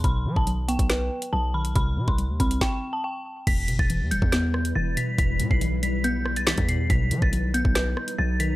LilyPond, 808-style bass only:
\new Staff \with { instrumentName = "808-style bass" } { \clef bass \time 4/4 \key e \minor \tempo 4 = 140 b,,8 fis16 b,,4 b,,8. r8 b,,4 | c,8 c16 c,8 dis,16 c,8 r2 | e,,8 g,,16 e,,8 e,16 e,,16 e,4~ e,16 e,,8 r8 | e,,8 b,16 b,,2~ b,,8 e,8. |
b,,8 fis16 b,,4 b,,8. r8 b,,4 | }